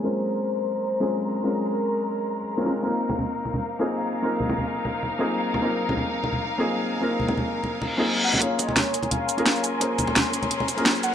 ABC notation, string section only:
X:1
M:4/4
L:1/8
Q:"Swing 16ths" 1/4=172
K:Bbm
V:1 name="String section"
[Bbc']8- | [Bbc']8 | [Ef]8- | [Ef]8- |
[Ef]8- | [Ef]8 | [DBac']8- | [DBac']8 |]